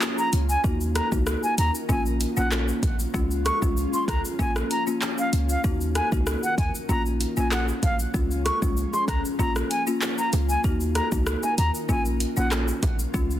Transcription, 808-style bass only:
0.33 0.57 C#2 medium
0.64 1.01 D#2 loud
1.12 1.36 C#2 medium
1.58 1.71 D#2 medium
1.89 2.26 A#1 loud
2.37 2.72 A#1 loud
2.83 3.07 A#1 medium
3.14 3.51 C#2 loud
3.62 3.86 C2 medium
4.08 4.21 C#2 loud
4.39 4.63 A#1 loud
5.33 5.57 C#2 medium
5.64 6.01 D#2 loud
6.12 6.36 C#2 medium
6.58 6.71 D#2 loud
6.89 7.26 A#1 loud
7.37 7.72 A#1 loud
7.83 8.07 A#1 medium
8.14 8.51 C#2 loud
8.62 8.86 C2 medium
9.08 9.21 C#2 loud
9.39 9.63 A#1 loud
10.33 10.57 C#2 loud
10.64 11.01 D#2 loud
11.12 11.36 C#2 medium
11.58 11.71 D#2 loud
11.89 12.26 A#1 loud
12.37 12.72 A#1 medium
12.83 13.07 A#1 medium
13.14 13.40 C#2 loud

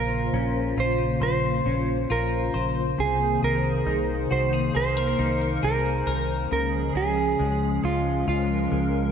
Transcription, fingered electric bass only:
0.00 0.28 A#1 medium
0.33 0.72 A#1 medium
0.77 1.16 A#1 medium
1.21 1.60 A#1 medium
1.65 2.04 A#1 medium
2.10 2.49 A#1 medium
2.54 2.93 A#1 medium
2.98 3.37 C2 medium
3.42 3.81 C2 medium
3.86 4.25 C2 medium
4.31 4.69 C2 medium
4.75 5.13 C2 medium
5.18 5.57 C2 medium
5.63 6.02 C2 medium
6.07 6.46 C2 medium
6.51 6.90 C#2 loud
6.94 7.34 C#2 medium
7.39 7.78 C#2 medium
7.83 8.22 C#2 medium
8.27 8.66 C#2 medium
8.71 9.10 C#2 medium

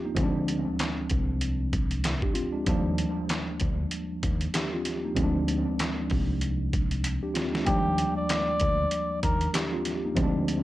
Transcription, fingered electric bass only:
0.17 0.64 D2 loud
1.11 2.19 C2 medium
2.67 3.04 D#2 loud
3.61 3.85 D2 medium
4.23 4.47 D#2 medium
5.17 5.64 D2 loud
6.11 7.19 C2 medium
7.67 8.05 D#2 loud
8.61 8.85 D2 loud
9.23 9.47 D#2 loud
10.17 10.63 D2 loud

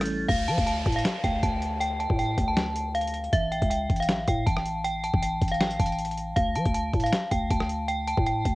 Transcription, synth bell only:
0.00 0.25 A6 medium
0.29 0.43 F5 loud
0.48 0.62 A5 medium
0.67 0.94 A5 medium
0.96 1.22 F5 medium
1.24 1.38 G5 medium
1.43 1.79 A5 medium
1.80 1.95 G5 loud
2.00 2.14 A5 medium
2.19 2.46 G5 loud
2.48 2.92 A5 medium
2.95 3.30 F5 medium
3.33 3.47 E5 loud
3.52 3.66 G5 medium
3.70 3.98 G5 medium
4.00 4.26 F5 medium
4.28 4.42 G5 medium
4.46 4.82 A5 medium
4.84 4.99 G5 loud
5.04 5.18 A5 medium
5.22 5.50 G5 medium
5.52 5.58 F5 medium
5.61 5.75 G5 medium
5.80 6.33 A5 medium
6.36 6.51 F5 loud
6.56 6.70 A5 medium
6.74 7.02 A5 medium
7.04 7.30 F5 medium
7.31 7.46 G5 medium
7.51 7.86 A5 medium
7.88 8.03 G5 loud
8.08 8.22 A5 medium
8.27 8.54 G5 loud

